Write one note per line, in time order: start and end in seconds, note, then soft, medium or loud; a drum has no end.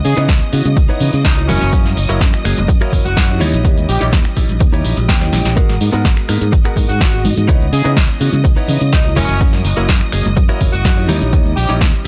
0.00 0.14 E3 medium
0.00 0.14 B3 medium
0.00 0.14 C#4 medium
0.00 0.14 D#5 medium
0.00 5.56 D#5 medium
0.00 5.56 D#6 medium
0.04 0.15 C#3 loud
0.04 0.22 G#4 medium
0.04 open hi-hat loud
0.04 tambourine loud
0.17 0.27 C#3 medium
0.17 0.50 E3 loud
0.17 0.50 B3 medium
0.17 0.50 C#4 medium
0.17 0.29 D#4 loud
0.17 0.29 E4 medium
0.17 0.29 B4 medium
0.17 0.29 C#5 medium
0.17 0.50 D#5 loud
0.17 closed hi-hat medium
0.17 tambourine medium
0.17 shaker medium
0.28 0.39 C#2 loud
0.28 kick loud
0.28 snare loud
0.28 closed hi-hat medium
0.28 tambourine soft
0.28 high conga medium
0.28 shaker medium
0.41 muted clean electric guitar stroke soft
0.41 shaker soft
0.52 0.63 C#3 medium
0.52 0.66 E3 medium
0.52 0.66 B3 medium
0.52 0.66 C#4 medium
0.52 0.67 F#4 loud
0.52 muted clean electric guitar stroke soft
0.52 open hi-hat loud
0.52 tambourine medium
0.65 0.75 C#3 medium
0.65 closed hi-hat medium
0.65 tambourine medium
0.65 high conga loud
0.65 shaker medium
0.77 0.87 C#2 loud
0.77 muted clean electric guitar stroke medium
0.77 kick loud
0.77 closed hi-hat medium
0.77 shaker medium
0.89 1.34 E3 medium
0.89 1.34 B3 medium
0.89 1.34 C#4 medium
0.89 1.13 D#4 loud
0.89 1.13 E4 medium
0.89 1.13 B4 medium
0.89 1.13 C#5 loud
0.89 1.34 D#5 medium
0.89 shaker soft
1.00 1.11 C#3 medium
1.00 open hi-hat loud
1.00 tambourine medium
1.00 low conga medium
1.13 1.23 C#3 medium
1.13 closed hi-hat medium
1.13 tambourine soft
1.13 high conga medium
1.13 shaker medium
1.25 1.50 C#2 medium
1.25 1.41 D#4 loud
1.25 kick loud
1.25 snare loud
1.25 closed hi-hat medium
1.25 shaker medium
1.37 1.70 F#3 medium
1.37 1.70 A#3 medium
1.37 1.70 C#4 medium
1.37 1.70 E4 medium
1.37 muted clean electric guitar stroke soft
1.37 closed hi-hat soft
1.37 shaker soft
1.48 1.59 F#1 medium
1.48 1.85 C#4 loud
1.48 1.97 E4 medium
1.48 1.97 F#4 medium
1.48 1.97 A#4 medium
1.48 1.97 C#5 medium
1.48 open hi-hat loud
1.48 tambourine loud
1.48 high conga medium
1.48 low conga medium
1.61 1.71 F#1 medium
1.61 closed hi-hat medium
1.61 tambourine medium
1.61 low conga medium
1.61 shaker medium
1.72 1.93 F#2 loud
1.72 2.06 F#3 medium
1.72 2.06 A#3 medium
1.72 2.06 C#4 medium
1.72 2.06 E4 medium
1.72 kick loud
1.72 closed hi-hat medium
1.72 shaker medium
1.85 snare soft
1.85 high conga medium
1.85 shaker soft
1.96 2.07 F#1 loud
1.96 open hi-hat loud
1.96 tambourine loud
2.09 2.19 F#1 medium
2.09 2.42 F#3 loud
2.09 2.42 A#3 medium
2.09 2.42 C#4 medium
2.09 2.21 E4 medium
2.09 2.42 E4 loud
2.09 2.21 F#4 medium
2.09 2.21 A#4 medium
2.09 2.21 C#5 medium
2.09 closed hi-hat medium
2.09 tambourine medium
2.09 shaker medium
2.21 2.31 F#2 loud
2.21 kick loud
2.21 snare loud
2.21 closed hi-hat medium
2.21 tambourine soft
2.21 high conga medium
2.21 shaker medium
2.33 finger snap medium
2.33 muted clean electric guitar stroke soft
2.33 shaker soft
2.44 2.55 F#1 medium
2.44 2.58 F#3 medium
2.44 2.58 A#3 medium
2.44 2.58 C#4 medium
2.44 2.59 G#4 loud
2.44 finger snap medium
2.44 muted clean electric guitar stroke soft
2.44 open hi-hat loud
2.44 tambourine medium
2.57 2.67 F#1 medium
2.57 closed hi-hat medium
2.57 tambourine medium
2.57 high conga loud
2.57 shaker medium
2.68 2.79 F#2 loud
2.68 muted clean electric guitar stroke medium
2.68 kick loud
2.68 closed hi-hat medium
2.68 tambourine soft
2.68 shaker medium
2.81 3.26 F#3 medium
2.81 3.26 A#3 medium
2.81 3.26 C#4 medium
2.81 3.05 E4 medium
2.81 3.26 E4 medium
2.81 3.05 F#4 medium
2.81 3.05 A#4 medium
2.81 3.05 C#5 medium
2.81 finger snap medium
2.81 shaker soft
2.93 3.03 F#1 medium
2.93 kick medium
2.93 open hi-hat loud
2.93 tambourine medium
2.93 low conga medium
3.05 3.15 F#1 loud
3.05 3.41 F#4 medium
3.05 closed hi-hat medium
3.05 tambourine soft
3.05 high conga medium
3.05 shaker medium
3.17 3.41 F#2 medium
3.17 kick loud
3.17 snare loud
3.17 closed hi-hat medium
3.17 shaker medium
3.29 3.62 G3 medium
3.29 3.62 C#4 medium
3.29 3.62 D#4 medium
3.29 3.62 E4 medium
3.29 muted clean electric guitar stroke soft
3.29 closed hi-hat soft
3.29 shaker soft
3.40 3.51 D#2 medium
3.40 3.88 D#4 medium
3.40 3.89 E4 medium
3.40 3.89 G4 medium
3.40 3.89 C#5 medium
3.40 open hi-hat loud
3.40 tambourine loud
3.40 high conga medium
3.40 low conga medium
3.53 3.63 A#1 loud
3.53 closed hi-hat medium
3.53 tambourine medium
3.53 low conga medium
3.53 shaker medium
3.64 3.85 D#2 loud
3.64 3.98 E3 medium
3.64 3.98 G3 medium
3.64 3.98 C#4 medium
3.64 3.98 D#5 medium
3.64 kick loud
3.64 closed hi-hat medium
3.64 shaker medium
3.77 closed hi-hat soft
3.77 high conga medium
3.77 shaker soft
3.89 3.99 A#1 loud
3.89 4.06 G4 medium
3.89 open hi-hat loud
3.89 tambourine loud
4.00 4.11 A#1 medium
4.00 4.34 E3 loud
4.00 4.34 G3 loud
4.00 4.34 C#4 medium
4.00 4.12 D#4 medium
4.00 4.13 E4 medium
4.00 4.13 G4 medium
4.00 4.13 C#5 medium
4.00 4.34 D#5 medium
4.00 closed hi-hat medium
4.00 tambourine soft
4.00 shaker medium
4.12 4.23 D#2 loud
4.12 kick loud
4.12 snare loud
4.12 closed hi-hat medium
4.12 tambourine soft
4.12 high conga medium
4.12 shaker medium
4.24 finger snap medium
4.24 muted clean electric guitar stroke soft
4.24 closed hi-hat soft
4.24 shaker soft
4.36 4.47 A#1 medium
4.36 4.50 G3 loud
4.36 4.50 C#4 medium
4.36 4.50 D#4 medium
4.36 4.51 E4 loud
4.36 muted clean electric guitar stroke soft
4.36 kick medium
4.36 open hi-hat loud
4.36 tambourine medium
4.49 4.59 A#1 medium
4.49 closed hi-hat medium
4.49 tambourine medium
4.49 high conga medium
4.49 shaker medium
4.60 4.81 D#2 loud
4.60 muted clean electric guitar stroke medium
4.60 kick loud
4.60 closed hi-hat medium
4.60 tambourine soft
4.60 shaker medium
4.73 5.18 E3 medium
4.73 5.18 G3 medium
4.73 5.18 C#4 medium
4.73 4.97 D#4 medium
4.73 4.97 E4 medium
4.73 4.97 G4 medium
4.73 4.97 C#5 loud
4.73 5.18 D#5 medium
4.73 closed hi-hat soft
4.73 shaker soft
4.84 4.95 A#1 medium
4.84 open hi-hat loud
4.84 tambourine medium
4.84 low conga medium
4.97 5.07 A#1 medium
4.97 closed hi-hat medium
4.97 tambourine medium
4.97 high conga medium
4.97 shaker medium
5.09 5.29 D#2 loud
5.09 5.53 G5 medium
5.09 kick loud
5.09 snare loud
5.09 closed hi-hat medium
5.09 shaker medium
5.21 5.54 E3 medium
5.21 5.54 G3 medium
5.21 5.54 C#4 medium
5.21 5.54 D#5 medium
5.21 muted clean electric guitar stroke soft
5.21 snare medium
5.21 closed hi-hat soft
5.21 shaker soft
5.32 5.43 A#1 loud
5.32 snare medium
5.32 open hi-hat loud
5.32 tambourine loud
5.32 high conga medium
5.32 low conga medium
5.44 5.55 A#1 loud
5.44 snare medium
5.44 closed hi-hat medium
5.44 tambourine medium
5.44 low conga medium
5.44 shaker medium
5.56 5.90 G#3 medium
5.56 5.75 B3 loud
5.56 5.90 B3 medium
5.56 5.75 F#4 loud
5.56 5.90 F#4 medium
5.56 5.75 G#4 loud
5.56 5.90 A#4 medium
5.56 5.75 A#4 loud
5.56 12.07 D#5 medium
5.56 12.07 D#6 medium
5.56 kick loud
5.56 closed hi-hat medium
5.56 tambourine soft
5.56 shaker medium
5.69 snare soft
5.69 high conga medium
5.69 shaker soft
5.81 5.91 G#2 loud
5.81 open hi-hat loud
5.81 tambourine medium
5.92 6.03 G#2 medium
5.92 6.26 G#3 loud
5.92 6.04 B3 loud
5.92 6.26 B3 medium
5.92 6.05 F#4 medium
5.92 6.26 F#4 loud
5.92 6.05 G#4 medium
5.92 6.26 A#4 medium
5.92 6.05 A#4 medium
5.92 closed hi-hat medium
5.92 tambourine medium
5.92 shaker medium
6.04 6.15 G#1 loud
6.04 kick loud
6.04 snare loud
6.04 closed hi-hat medium
6.04 tambourine soft
6.04 high conga medium
6.04 shaker medium
6.17 finger snap medium
6.17 muted clean electric guitar stroke soft
6.17 shaker soft
6.28 6.39 G#2 medium
6.28 6.42 G#3 medium
6.28 6.42 A#3 medium
6.28 6.42 B3 medium
6.28 6.42 A#4 loud
6.28 finger snap medium
6.28 muted clean electric guitar stroke soft
6.28 open hi-hat loud
6.28 tambourine medium
6.41 6.51 G#2 medium
6.41 closed hi-hat medium
6.41 tambourine medium
6.41 high conga medium
6.41 shaker medium
6.52 6.63 G#1 loud
6.52 muted clean electric guitar stroke medium
6.52 kick loud
6.52 closed hi-hat medium
6.52 shaker medium
6.64 7.10 G#3 medium
6.64 6.89 B3 medium
6.64 7.10 B3 medium
6.64 7.10 F#4 medium
6.64 6.89 F#4 medium
6.64 6.89 G#4 medium
6.64 7.10 A#4 medium
6.64 6.89 A#4 medium
6.64 finger snap medium
6.64 shaker soft
6.76 6.87 G#2 medium
6.76 kick medium
6.76 open hi-hat loud
6.76 tambourine loud
6.76 low conga medium
6.89 6.99 G#2 medium
6.89 7.25 F#4 medium
6.89 closed hi-hat medium
6.89 tambourine medium
6.89 high conga medium
6.89 shaker medium
7.01 7.27 G#1 medium
7.01 kick loud
7.01 snare loud
7.01 closed hi-hat medium
7.01 shaker medium
7.13 7.46 G#3 medium
7.13 7.46 B3 medium
7.13 7.46 F#4 medium
7.13 muted clean electric guitar stroke soft
7.13 closed hi-hat soft
7.13 shaker soft
7.25 7.35 G#2 medium
7.25 open hi-hat loud
7.25 tambourine loud
7.25 high conga medium
7.25 low conga loud
7.37 7.47 G#2 loud
7.37 closed hi-hat medium
7.37 tambourine medium
7.37 low conga medium
7.37 shaker medium
7.48 7.69 C#2 loud
7.48 7.82 E3 medium
7.48 7.82 B3 medium
7.48 7.82 C#4 medium
7.48 7.67 D#4 loud
7.48 7.67 E4 loud
7.48 7.67 B4 loud
7.48 7.67 C#5 loud
7.48 7.82 D#5 loud
7.48 kick loud
7.48 closed hi-hat medium
7.48 tambourine soft
7.48 shaker medium
7.61 high conga medium
7.61 shaker soft
7.73 7.83 C#3 loud
7.73 7.90 G#4 medium
7.73 open hi-hat loud
7.73 tambourine medium
7.84 7.95 C#3 medium
7.84 8.18 E3 loud
7.84 8.18 B3 medium
7.84 8.18 C#4 medium
7.84 7.97 D#4 medium
7.84 7.97 E4 medium
7.84 7.97 B4 medium
7.84 8.18 D#5 loud
7.84 7.97 D#5 medium
7.84 closed hi-hat medium
7.84 tambourine medium
7.84 shaker medium
7.96 8.07 C#2 loud
7.96 kick loud
7.96 snare loud
7.96 closed hi-hat medium
7.96 tambourine soft
7.96 high conga medium
7.96 shaker medium
8.09 muted clean electric guitar stroke soft
8.09 shaker soft
8.20 8.31 C#3 medium
8.20 8.34 E3 medium
8.20 8.34 B3 medium
8.20 8.34 C#4 medium
8.20 8.35 F#4 loud
8.20 muted clean electric guitar stroke soft
8.20 open hi-hat loud
8.20 tambourine medium
8.33 8.43 C#3 medium
8.33 closed hi-hat medium
8.33 tambourine medium
8.33 high conga medium
8.33 shaker medium
8.44 8.55 C#2 loud
8.44 muted clean electric guitar stroke medium
8.44 kick loud
8.44 closed hi-hat medium
8.44 tambourine soft
8.44 shaker medium
8.56 9.02 E3 medium
8.56 9.02 B3 medium
8.56 9.02 C#4 medium
8.56 8.81 D#4 loud
8.56 8.81 E4 medium
8.56 8.81 B4 medium
8.56 8.81 C#5 medium
8.56 9.02 D#5 medium
8.56 shaker soft
8.68 8.79 C#3 medium
8.68 open hi-hat loud
8.68 tambourine loud
8.68 low conga loud
8.81 8.91 C#3 medium
8.81 closed hi-hat medium
8.81 tambourine soft
8.81 high conga medium
8.81 shaker medium
8.92 9.18 C#2 loud
8.92 9.10 D#4 medium
8.92 kick loud
8.92 snare loud
8.92 closed hi-hat medium
8.92 tambourine soft
8.92 shaker medium
9.04 9.38 F#3 medium
9.04 9.38 A#3 medium
9.04 9.38 C#4 medium
9.04 9.38 E4 medium
9.04 muted clean electric guitar stroke soft
9.04 closed hi-hat soft
9.04 shaker soft
9.16 9.27 F#1 medium
9.16 9.53 C#4 loud
9.16 9.64 E4 medium
9.16 9.65 F#4 medium
9.16 9.65 A#4 medium
9.16 9.65 C#5 medium
9.16 open hi-hat loud
9.16 tambourine loud
9.16 high conga loud
9.16 low conga loud
9.29 9.39 F#1 loud
9.29 closed hi-hat medium
9.29 tambourine soft
9.29 low conga medium
9.29 shaker medium
9.40 9.61 F#2 loud
9.40 9.74 F#3 medium
9.40 9.74 A#3 medium
9.40 9.74 C#4 medium
9.40 9.75 E4 loud
9.40 kick loud
9.40 closed hi-hat medium
9.40 tambourine soft
9.40 shaker medium
9.53 snare soft
9.53 high conga medium
9.53 shaker soft
9.64 9.75 F#1 loud
9.64 open hi-hat loud
9.64 tambourine medium
9.77 9.87 F#1 medium
9.77 10.10 F#3 loud
9.77 10.10 A#3 medium
9.77 10.10 C#4 medium
9.77 9.88 E4 medium
9.77 10.10 E4 loud
9.77 9.89 F#4 medium
9.77 9.89 A#4 medium
9.77 9.89 C#5 medium
9.77 closed hi-hat medium
9.77 tambourine medium
9.77 shaker medium
9.88 9.99 F#2 loud
9.88 kick loud
9.88 snare loud
9.88 closed hi-hat medium
9.88 tambourine soft
9.88 high conga medium
9.88 shaker medium
10.01 finger snap medium
10.01 muted clean electric guitar stroke soft
10.01 shaker soft
10.12 10.23 F#1 medium
10.12 10.26 F#3 medium
10.12 10.26 A#3 medium
10.12 10.26 C#4 medium
10.12 10.27 G#4 loud
10.12 finger snap medium
10.12 muted clean electric guitar stroke soft
10.12 open hi-hat loud
10.12 tambourine medium
10.25 10.35 F#1 medium
10.25 closed hi-hat medium
10.25 tambourine soft
10.25 high conga loud
10.25 shaker medium
10.36 10.47 F#2 loud
10.36 muted clean electric guitar stroke medium
10.36 kick loud
10.36 closed hi-hat medium
10.36 shaker medium
10.49 10.94 F#3 medium
10.49 10.94 A#3 medium
10.49 10.94 C#4 medium
10.49 10.73 E4 loud
10.49 10.95 E4 medium
10.49 10.73 F#4 medium
10.49 10.73 A#4 medium
10.49 10.73 C#5 loud
10.49 finger snap medium
10.49 shaker soft
10.61 10.71 F#1 medium
10.61 kick medium
10.61 open hi-hat loud
10.61 tambourine medium
10.61 low conga loud
10.73 10.83 F#1 medium
10.73 11.09 F#4 loud
10.73 closed hi-hat medium
10.73 tambourine soft
10.73 high conga medium
10.73 shaker medium
10.85 11.09 F#2 medium
10.85 kick loud
10.85 snare loud
10.85 closed hi-hat medium
10.85 shaker medium
10.97 11.30 G3 medium
10.97 11.30 C#4 medium
10.97 11.30 D#4 medium
10.97 11.30 E4 medium
10.97 muted clean electric guitar stroke soft
10.97 closed hi-hat soft
10.97 shaker soft
11.09 11.19 D#2 medium
11.09 11.57 D#4 loud
11.09 11.57 E4 medium
11.09 11.57 G4 medium
11.09 11.57 C#5 loud
11.09 open hi-hat loud
11.09 tambourine medium
11.09 high conga loud
11.09 low conga loud
11.21 11.31 A#1 loud
11.21 closed hi-hat medium
11.21 tambourine medium
11.21 low conga medium
11.21 shaker medium
11.33 11.53 D#2 loud
11.33 11.66 E3 medium
11.33 11.66 G3 medium
11.33 11.66 C#4 medium
11.33 11.66 D#5 medium
11.33 kick loud
11.33 closed hi-hat medium
11.33 shaker medium
11.46 high conga medium
11.46 shaker soft
11.56 11.67 A#1 loud
11.56 11.73 G4 medium
11.56 open hi-hat loud
11.56 tambourine medium
11.69 11.79 A#1 medium
11.69 12.02 E3 loud
11.69 12.02 G3 loud
11.69 12.02 C#4 loud
11.69 11.81 D#4 loud
11.69 11.81 E4 medium
11.69 11.81 G4 medium
11.69 11.81 C#5 medium
11.69 12.02 D#5 medium
11.69 closed hi-hat medium
11.69 tambourine medium
11.69 shaker medium
11.81 11.91 D#2 loud
11.81 kick loud
11.81 snare loud
11.81 closed hi-hat medium
11.81 tambourine soft
11.81 high conga medium
11.81 shaker medium
11.93 muted clean electric guitar stroke soft
11.93 shaker soft
12.04 12.07 G3 medium